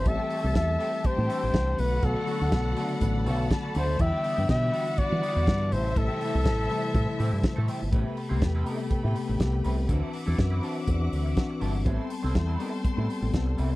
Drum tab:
HH |xoxoxoxo|xoxoxoxo|xoxoxoxo|xoxoxoxo|
SD |--o---o-|--o---o-|--o---o-|--o---o-|
BD |o-o-o-o-|o-o-o-o-|o-o-o-o-|o-o-o-o-|

HH |xoxoxoxo|xoxoxoxo|xoxoxoxo|
SD |--o---o-|--o---o-|--o---o-|
BD |o-o-o-o-|o-o-o-o-|o-o-o-o-|